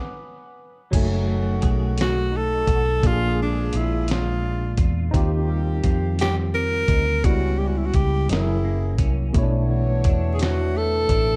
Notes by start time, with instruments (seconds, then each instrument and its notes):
Already playing: tenor saxophone B3
0.91 fingered electric bass F#1, horn section D#3 C#4 F#4, tine electric piano F#3 D#4 G#5, clean electric guitar F#3, kick, closed hi-hat, crash
0.96 tine electric piano A3
1.27 clean electric guitar A3
1.61 fingered electric bass B1, clean electric guitar G#4, kick, closed hi-hat
1.96 clean electric guitar A3, closed hi-hat
2.01 tenor saxophone F#4, snare
2.32 clean electric guitar D#4
2.37 tenor saxophone A4
2.67 fingered electric bass B1, clean electric guitar F#4, kick, closed hi-hat
2.85 clean electric guitar G#4
3.01 fingered electric bass A#1, tine electric piano A#2 A#3, clean electric guitar A#2, horn section F3 D4 G#4, kick, closed hi-hat
3.05 tine electric piano D4 G4, tenor saxophone F4
3.13 tine electric piano G#4
3.37 clean electric guitar G#3
3.42 tenor saxophone D4
3.72 fingered electric bass A#1, clean electric guitar F4, closed hi-hat
3.77 tenor saxophone E4
4.07 clean electric guitar G#3, closed hi-hat
4.11 tenor saxophone F4, snare
4.43 clean electric guitar D4
4.78 fingered electric bass E2, clean electric guitar F4, kick, closed hi-hat
5.11 fingered electric bass D#2, horn section C3 A#3 G4, clean electric guitar D#3, tine electric piano C4 D#4 F4, kick, closed hi-hat
5.17 tine electric piano G4
5.49 clean electric guitar G3
5.83 fingered electric bass F2, clean electric guitar F4, kick, closed hi-hat
6.18 clean electric guitar G3, tenor saxophone G4, closed hi-hat
6.22 snare
6.54 clean electric guitar C4, tenor saxophone A#4
6.88 fingered electric bass D2, clean electric guitar D#4, kick, closed hi-hat
7.06 clean electric guitar F4
7.24 fingered electric bass C#2, tine electric piano C#3 G3 B3 E4, clean electric guitar C#3, horn section E3 G3 C#4, tenor saxophone F#4, kick, closed hi-hat
7.59 clean electric guitar G3, tenor saxophone G4
7.67 tenor saxophone F#4
7.78 tenor saxophone E4
7.85 tenor saxophone F#4
7.94 fingered electric bass C#2, clean electric guitar E4, tenor saxophone G4, kick, closed hi-hat
8.29 fingered electric bass F#1, clean electric guitar F#2, horn section E3 C#4 G#4, tine electric piano F#3 C#4 E4 A#4, tenor saxophone E4, snare, closed hi-hat
8.64 clean electric guitar A#3
8.98 fingered electric bass C2, clean electric guitar C#4, kick, closed hi-hat
9.33 fingered electric bass B1, clean electric guitar B2, tine electric piano B2 A3 C#4, horn section D3 F#4 C#5, glass harmonica B4 E5 A5, kick, closed hi-hat
9.37 tine electric piano E4 C#5
9.43 tine electric piano D4
9.69 clean electric guitar E3
10.04 fingered electric bass E2, clean electric guitar D4, kick, closed hi-hat
10.34 tenor saxophone G#4
10.38 clean electric guitar E3, tenor saxophone F#4, closed hi-hat
10.43 snare
10.74 clean electric guitar A3, tenor saxophone A4
11.09 fingered electric bass A1, clean electric guitar D4, kick, closed hi-hat